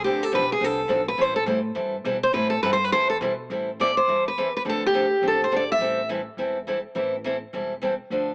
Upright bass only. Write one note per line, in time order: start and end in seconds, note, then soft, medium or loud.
0.04 0.32 D2 medium
0.33 0.60 B1 medium
0.61 0.89 C2 medium
0.90 1.17 B1 loud
1.18 1.45 A1 medium
1.46 1.75 A2 loud
1.76 2.04 G2 medium
2.04 2.33 B2 loud
2.35 2.63 A2 medium
2.63 2.91 G2 loud
2.92 3.20 E2 medium
3.21 3.49 B2 loud
3.50 3.96 A1 medium
4.07 4.54 E2 medium
4.65 5.11 D2 medium
5.22 5.68 A1 medium
5.78 6.25 A1 medium
6.37 6.84 E1 medium
6.96 7.42 A1 medium
7.53 8.00 E1 medium
8.10 8.35 D2 medium